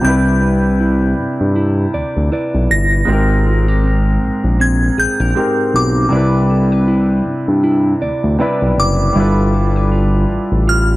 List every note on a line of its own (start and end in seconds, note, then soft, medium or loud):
0.00 3.03 C3 medium
0.00 0.50 G3 medium
0.00 3.03 G3 medium
0.00 0.13 F4 medium
0.00 0.42 B4 medium
0.04 1.14 C2 loud
0.04 3.12 C4 medium
0.04 3.04 D4 medium
0.04 3.05 E4 medium
0.04 1.93 D5 medium
0.04 2.28 G6 loud
0.08 3.06 B4 medium
0.42 2.31 B4 medium
0.80 1.55 E4 medium
1.18 1.27 G2 soft
1.41 1.86 G2 medium
1.56 2.31 E4 medium
1.94 2.03 D2 soft
1.94 2.32 D5 medium
2.17 2.30 D2 medium
2.32 3.17 E4 medium
2.32 3.08 B4 medium
2.32 3.17 D5 medium
2.55 2.68 B1 medium
2.71 3.03 G1 medium
2.71 4.66 A#6 loud
3.05 4.18 G#1 loud
3.05 5.30 G#2 medium
3.05 5.31 G#3 medium
3.05 6.12 G#3 medium
3.05 5.32 C4 medium
3.05 4.98 A#4 medium
3.10 5.33 G4 medium
3.10 5.34 A#4 medium
3.46 3.68 F4 medium
3.68 5.35 G4 medium
3.84 4.59 C4 medium
4.22 4.31 A#1 soft
4.44 4.90 A#1 medium
4.60 5.36 C4 medium
4.60 5.00 G#6 medium
4.98 5.07 A#1 soft
4.98 5.20 G#4 medium
4.98 5.77 G6 medium
5.20 5.34 A#1 loud
5.20 5.36 A#4 medium
5.35 6.11 G#2 soft
5.35 6.12 G#3 soft
5.35 6.12 C4 medium
5.35 6.12 C4 soft
5.35 6.53 G4 medium
5.35 6.13 G4 soft
5.35 6.21 A#4 medium
5.35 6.13 A#4 medium
5.74 6.06 B1 medium
5.74 6.85 D6 medium
6.09 7.22 C2 loud
6.09 8.34 C3 medium
6.09 8.35 G3 medium
6.09 9.16 C4 medium
6.09 8.36 D4 medium
6.13 8.37 E4 medium
6.13 8.38 B4 medium
6.13 8.01 D5 medium
6.50 6.72 A4 medium
6.72 8.39 B4 medium
6.88 7.63 E4 medium
7.26 7.35 G2 soft
7.48 7.94 G2 medium
7.64 8.39 E4 medium
8.02 8.11 D2 soft
8.02 8.40 D5 medium
8.24 8.37 D2 medium
8.39 9.15 C3 medium
8.39 9.11 G3 medium
8.39 9.13 D4 medium
8.39 9.91 E4 medium
8.39 9.14 E4 medium
8.39 9.53 B4 medium
8.39 9.17 B4 medium
8.39 10.97 D5 medium
8.62 8.75 B1 medium
8.78 9.10 F#1 loud
8.78 10.74 D6 loud
9.13 10.26 G1 loud
9.13 10.97 G3 medium
9.13 10.97 D4 medium
9.13 10.97 E4 medium
9.17 10.97 F4 medium
9.17 10.97 A4 medium
9.17 10.97 B4 medium
9.54 9.76 A4 medium
9.76 10.97 B4 soft
9.92 10.66 F4 medium
10.30 10.39 A1 soft
10.52 10.97 A1 medium
10.68 10.97 F4 medium
10.68 10.83 F6 loud